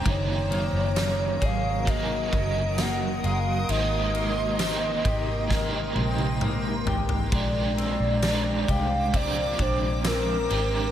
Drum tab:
RD |x-x-x-x-x-x-x-x-|x-x-x-x---------|x-x-x-x-x-x-x-x-|
TB |----x-------x---|----x-----------|----x-------x---|
SD |----o-------o---|----o---o-------|----o-------o---|
T1 |----------------|----------oo----|----------------|
T2 |----------------|------------o---|----------------|
FT |----------------|--------------oo|----------------|
BD |o-----o-o-o-----|------o-o-------|o-----o-o-o-----|